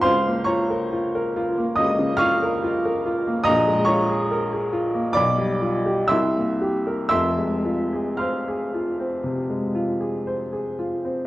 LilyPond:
\new Staff \with { instrumentName = "Upright piano" } { \time 4/4 \key f \minor \tempo 4 = 68 << { <c'' f'' c'''>8 <des'' bes'' des'''>4. <ees'' ees'''>8 <f'' des''' f'''>4. | <ees'' bes'' ees'''>8 <des'' bes'' des'''>4. <d'' b'' d'''>4 <e'' c''' e'''>4 | <e'' c''' e'''>4 <f'' c''' f'''>2~ <f'' c''' f'''>8 r8 | } \\ { des,16 bes16 f'16 bes'16 f'16 bes'16 f'16 bes16 des,16 des16 f'16 bes'16 f'16 bes'16 f'16 bes16 | bes,,16 aes16 f'16 aes'16 bes'16 aes'16 f'16 bes16 b,,16 g16 f'16 g'16 c,16 bes16 g'16 bes'16 | <f,, f,>16 aes16 f'16 aes'16 c''16 aes'16 f'16 c'16 c16 aes16 f'16 aes'16 c''16 aes'16 f'16 c'16 | } >> }